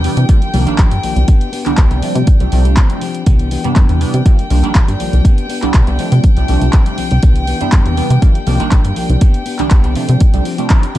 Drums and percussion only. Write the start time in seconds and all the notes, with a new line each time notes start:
0.04 open hi-hat
0.17 closed hi-hat
0.29 kick, closed hi-hat
0.42 closed hi-hat
0.54 open hi-hat
0.67 closed hi-hat
0.78 kick, clap, closed hi-hat
0.91 closed hi-hat
1.03 open hi-hat
1.16 closed hi-hat
1.28 kick, closed hi-hat
1.41 closed hi-hat
1.53 open hi-hat
1.66 clap, closed hi-hat
1.77 kick, clap, closed hi-hat
1.91 closed hi-hat
2.02 open hi-hat
2.15 closed hi-hat
2.27 kick, closed hi-hat
2.40 closed hi-hat
2.52 open hi-hat
2.65 closed hi-hat
2.77 kick, clap, closed hi-hat
2.90 closed hi-hat
3.01 open hi-hat
3.15 closed hi-hat
3.26 kick, closed hi-hat
3.39 closed hi-hat
3.51 open hi-hat
3.64 closed hi-hat
3.76 kick, clap, closed hi-hat
3.89 closed hi-hat
4.01 open hi-hat
4.14 closed hi-hat
4.26 kick, closed hi-hat
4.39 closed hi-hat
4.50 open hi-hat
4.64 closed hi-hat
4.75 kick, clap, closed hi-hat
4.88 closed hi-hat
5.00 open hi-hat
5.13 closed hi-hat
5.25 kick, closed hi-hat
5.38 closed hi-hat
5.50 open hi-hat
5.62 clap, closed hi-hat
5.74 kick, clap, closed hi-hat
5.87 closed hi-hat
5.99 open hi-hat
6.12 closed hi-hat
6.24 kick, closed hi-hat
6.37 closed hi-hat
6.48 open hi-hat
6.61 closed hi-hat
6.73 kick, clap, closed hi-hat
6.86 closed hi-hat
6.98 open hi-hat
7.11 closed hi-hat
7.23 kick, closed hi-hat
7.36 closed hi-hat
7.47 open hi-hat
7.61 closed hi-hat
7.72 kick, clap, closed hi-hat
7.86 closed hi-hat
7.97 open hi-hat
8.10 closed hi-hat
8.22 kick, closed hi-hat
8.35 closed hi-hat
8.47 open hi-hat
8.60 closed hi-hat
8.71 kick, clap, closed hi-hat
8.85 closed hi-hat
8.96 open hi-hat
9.10 closed hi-hat
9.21 kick, closed hi-hat
9.34 closed hi-hat
9.46 open hi-hat
9.59 clap, closed hi-hat
9.71 kick, clap, closed hi-hat
9.84 closed hi-hat
9.95 open hi-hat
10.09 closed hi-hat
10.20 kick, closed hi-hat
10.34 closed hi-hat
10.45 open hi-hat
10.58 closed hi-hat
10.70 kick, clap, closed hi-hat
10.83 closed hi-hat
10.95 open hi-hat